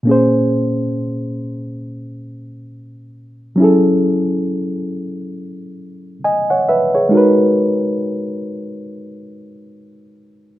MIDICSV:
0, 0, Header, 1, 2, 480
1, 0, Start_track
1, 0, Tempo, 500000
1, 10166, End_track
2, 0, Start_track
2, 0, Title_t, "Reed electric piano"
2, 0, Program_c, 0, 4
2, 30, Note_on_c, 0, 46, 56
2, 51, Note_on_c, 0, 58, 44
2, 68, Note_on_c, 0, 61, 49
2, 90, Note_on_c, 0, 68, 49
2, 109, Note_on_c, 0, 72, 64
2, 245, Control_c, 0, 64, 127
2, 3390, Note_off_c, 0, 46, 0
2, 3400, Note_off_c, 0, 58, 0
2, 3409, Note_off_c, 0, 61, 0
2, 3416, Note_on_c, 0, 54, 61
2, 3420, Note_off_c, 0, 68, 0
2, 3429, Note_off_c, 0, 72, 0
2, 3433, Note_on_c, 0, 61, 54
2, 3451, Control_c, 0, 64, 0
2, 3457, Note_on_c, 0, 64, 51
2, 3476, Note_on_c, 0, 68, 53
2, 3495, Note_on_c, 0, 69, 63
2, 3620, Control_c, 0, 64, 127
2, 5930, Note_off_c, 0, 54, 0
2, 5938, Note_off_c, 0, 61, 0
2, 5950, Note_off_c, 0, 64, 0
2, 5960, Note_off_c, 0, 68, 0
2, 5969, Note_off_c, 0, 69, 0
2, 5995, Note_on_c, 0, 80, 51
2, 5999, Note_on_c, 0, 75, 42
2, 6223, Note_off_c, 0, 80, 0
2, 6225, Note_off_c, 0, 75, 0
2, 6242, Note_on_c, 0, 78, 46
2, 6248, Note_on_c, 0, 73, 43
2, 6402, Note_off_c, 0, 78, 0
2, 6405, Note_off_c, 0, 73, 0
2, 6418, Note_on_c, 0, 76, 58
2, 6425, Note_on_c, 0, 71, 46
2, 6646, Note_off_c, 0, 76, 0
2, 6650, Note_off_c, 0, 71, 0
2, 6669, Note_on_c, 0, 73, 46
2, 6674, Note_on_c, 0, 68, 40
2, 6807, Note_on_c, 0, 56, 51
2, 6826, Note_on_c, 0, 63, 54
2, 6841, Control_c, 0, 64, 0
2, 6845, Note_on_c, 0, 66, 52
2, 6863, Note_on_c, 0, 70, 53
2, 6885, Note_on_c, 0, 71, 60
2, 7001, Control_c, 0, 64, 127
2, 7063, Note_off_c, 0, 73, 0
2, 7065, Note_off_c, 0, 68, 0
2, 10166, Note_off_c, 0, 56, 0
2, 10166, Note_off_c, 0, 63, 0
2, 10166, Note_off_c, 0, 66, 0
2, 10166, Note_off_c, 0, 70, 0
2, 10166, Note_off_c, 0, 71, 0
2, 10166, End_track
0, 0, End_of_file